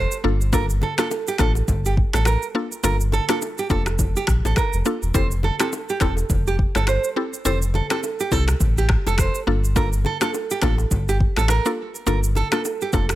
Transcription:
Already playing: C5
0.12 shaker
0.24 G1 A#3 D4 F4 A4
0.41 shaker
0.53 A#3 D4 F4 A4 A#4, kick, low conga, shaker
0.70 shaker
0.82 A4, high bongo, low conga
0.98 A#3 D4 F4 A4, finger snap, cross-stick, shaker
1.11 high bongo, shaker
1.28 G4, shaker
1.38 A1 A#3 D4 F4 A4, finger snap, kick, cross-stick, low bongo, shaker
1.55 high bongo, shaker
1.68 G1, kick, low bongo, low conga, shaker
1.86 G4, shaker
1.97 kick
2.13 A1 A4, finger snap, cross-stick, low bongo, shaker
2.25 A#4, finger snap, cross-stick, high bongo, shaker
2.42 shaker
2.55 A#3 D4 F4 A4
2.72 shaker
2.84 G1 A#3 D4 F4 A4 A#4, low conga, shaker
3.01 shaker
3.12 A4, high bongo, low conga, shaker
3.29 A#3 D4 F4 A4, finger snap, cross-stick, shaker
3.42 high bongo, shaker
3.58 G4, shaker
3.70 F1 A#3 D4 F4 A4, kick, low bongo, shaker
3.86 finger snap, cross-stick, high bongo, shaker
3.99 kick, low bongo, low conga, shaker
4.16 G4, shaker
4.27 A#1, finger snap, kick, cross-stick, shaker
4.45 A1 A4, low bongo, shaker
4.56 A#4, finger snap, kick, cross-stick, high bongo, shaker
4.73 F1, shaker
4.85 A#3 D4 F4 A4, shaker
5.03 E1, shaker
5.14 F1 C4 E4 G4 A4 C5, kick, low conga, shaker
5.31 shaker
5.43 A4, high bongo, low conga
5.60 C4 E4 G4 A4, finger snap, cross-stick, shaker
5.73 high bongo, shaker
5.89 G4, shaker
6.00 E1 C4 E4 G4 A4, finger snap, kick, cross-stick, low bongo, shaker
6.17 high bongo, shaker
6.30 F1, kick, low bongo, low conga, shaker
6.47 G4, shaker
6.59 kick
6.75 G1 A4, finger snap, cross-stick, low bongo, shaker
6.87 C5, finger snap, cross-stick, high bongo, shaker
7.04 shaker
7.16 C4 E4 G4 A4
7.34 shaker
7.45 F1 C4 E4 G4 A4 C5, low conga, shaker
7.62 shaker
7.74 A4, high bongo, low conga
7.90 C4 E4 G4 A4, finger snap, cross-stick, shaker
8.03 high bongo, shaker
8.20 G4, shaker
8.31 C2 C4 E4 G4 A4, kick, low bongo, shaker
8.48 finger snap, cross-stick, high bongo, shaker
8.60 A1, kick, low bongo, low conga, shaker
8.78 G4, shaker
8.89 finger snap, kick, cross-stick
9.06 F1 A4, low bongo, shaker
9.18 C5, finger snap, kick, cross-stick, high bongo, shaker
9.35 shaker
9.47 G1 A#3 D4 F4 A4
9.64 shaker
9.76 A#3 D4 F4 A4 A#4, kick, low conga, shaker
9.93 shaker
10.05 A4, high bongo, low conga
10.21 A#3 D4 F4 A4, finger snap, cross-stick, shaker
10.34 high bongo, shaker
10.51 G4, shaker
10.62 A1 A#3 D4 F4 A4, finger snap, kick, cross-stick, low bongo, shaker
10.78 high bongo, shaker
10.91 G1, kick, low bongo, low conga, shaker
11.09 G4, shaker
11.20 kick
11.36 A1 A4, finger snap, cross-stick, low bongo, shaker
11.48 A#4, finger snap, cross-stick, high bongo, shaker
11.65 A#3 D4 F4 A4, shaker
11.95 shaker
12.07 G1 A#3 D4 F4 A4 A#4, low conga, shaker
12.24 shaker
12.35 A4, high bongo, low conga, shaker
12.52 A#3 D4 F4 A4, finger snap, cross-stick, shaker
12.65 high bongo, shaker
12.81 G4, shaker
12.93 F1 A#3 D4 F4 A4, kick, low bongo, shaker
13.09 finger snap, cross-stick, high bongo, shaker

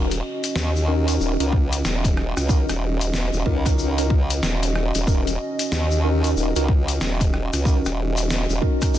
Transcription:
Already playing: D#1 C#4 D#4 F#4 A#4 D#5
0.11 closed hi-hat, shaker
0.44 closed hi-hat, shaker
0.56 D#2, snare, shaker
0.76 shaker
0.88 C#4 D#4 F#4 A#4
1.08 C#4 D#4 F#4 A#4, closed hi-hat, shaker
1.20 D#1, shaker
1.40 C#2 C#4 D#4 F#4 A#4, closed hi-hat, shaker
1.52 kick
1.72 closed hi-hat, shaker
1.85 D#1, snare, shaker
2.04 kick, closed hi-hat, shaker
2.17 cross-stick
2.37 C#2, cross-stick, shaker
2.49 C#4 D#4 F#4 A#4, kick, shaker
2.69 D#1, cross-stick, closed hi-hat, shaker
3.01 closed hi-hat, shaker
3.14 snare, shaker
3.33 D#1, shaker
3.46 C#2 C#4 D#4 F#4 A#4, kick
3.66 C#4 D#4 F#4 A#4, kick, cross-stick, closed hi-hat, shaker
3.79 shaker
3.98 C#4 D#4 F#4 A#4, closed hi-hat, shaker
4.10 kick
4.30 closed hi-hat, shaker
4.43 D#1, snare, shaker
4.63 closed hi-hat, shaker
4.75 cross-stick
4.95 D#1, closed hi-hat, shaker
5.07 D#1 C#4 D#4 F#4 A#4, kick, shaker
5.27 closed hi-hat, shaker
5.59 closed hi-hat, shaker
5.72 D#2, snare, shaker
5.91 shaker
6.04 C#4 D#4 F#4 A#4
6.24 C#4 D#4 F#4 A#4, closed hi-hat, shaker
6.36 D#1, shaker
6.56 C#2 C#4 D#4 F#4 A#4, closed hi-hat, shaker
6.68 kick
6.88 closed hi-hat, shaker
7.01 D#1, snare, shaker
7.21 kick, closed hi-hat, shaker
7.34 cross-stick
7.53 C#2, cross-stick, closed hi-hat, shaker
7.65 C#4 D#4 F#4 A#4, kick, shaker
7.85 D#1, cross-stick, closed hi-hat, shaker
8.17 closed hi-hat, shaker
8.30 snare, shaker
8.49 D#1, shaker
8.61 C#4 D#4 F#4 A#4, kick
8.81 C#4 D#4 F#4 A#4, kick, cross-stick, closed hi-hat, shaker
8.94 A#1, shaker

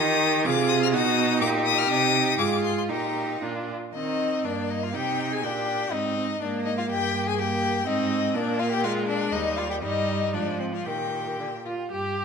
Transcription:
Already playing: D#3 D#4 D#6
0.00 G4
0.45 C3 F4 G#4 D6
0.69 D#6
0.83 F6
0.93 B2 D#4 F#4 D#6
1.41 A#2 G4 D6
1.66 D#6
1.78 F6
1.89 C3 D#4 D#6
2.38 G#2 F4 G#4 D6
2.64 C6
2.78 C6
2.89 A#2 D#4 G4 A#5
3.41 A#2 D4 F4
3.94 D#3 C4 D#4 D#5
4.44 G2 A#3 D4 D5
4.70 D#4 D#5
4.83 F4 F5
4.94 C3 D#4 G4 G5
5.32 G#4 G#5
5.43 A#2 D4 G4 G5
5.92 G#2 C4 D#4 D#5
6.17 C4
6.41 G#2 A#3 D4 D5
6.65 D#4 D#5
6.78 F4 F5
6.89 G2 G4 G5
7.27 G#4 G#5
7.38 A#3 G4 G5
7.86 G#2 C4 D#4 D#5
8.35 A#2 A#3 D4 D5
8.59 F4 F5
8.72 G4 G5
8.84 G#3 F4 F5
9.08 D4 D5
9.33 D#2 G3 D#4 D#5
9.57 F4 F5
9.70 G4 G5
9.82 G2 G3 D#4 D#5
10.34 G#2 F3 D4 D5
10.59 C4 C5
10.73 F4 F5
10.86 A#2 D#3 G4 G5
11.39 D3
11.65 F4
11.91 G2 G4

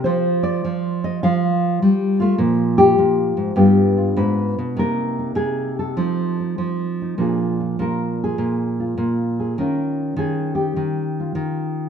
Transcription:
0.04 F3 F4 C5
0.43 D5
0.65 F3
1.04 D#5
1.23 F3 F5
1.82 G3
2.20 A3 F4
2.38 A#2 F3
2.78 G4
2.98 A#2
3.37 G#2
3.56 G2 B3 D4 F4 G4
3.97 F4
4.17 G#2 B4
4.59 B2
4.77 C3 A#3 D#4 A#4
5.19 D#4
5.35 C3 G#4
5.79 A4
5.97 F3 C4 D#4
6.40 D#4
6.58 F3
7.02 D#4
7.18 A#2 F3 D4 F4 G#4
7.60 F4
7.79 A#2 A#4
8.24 G#4
8.38 A#2
8.80 F4
8.98 A#2
9.40 G#4
9.58 D#3 C#4 F4 A#4
10.17 D#3 G#4
10.55 G4
10.76 D#3
11.20 F4
11.35 D#3

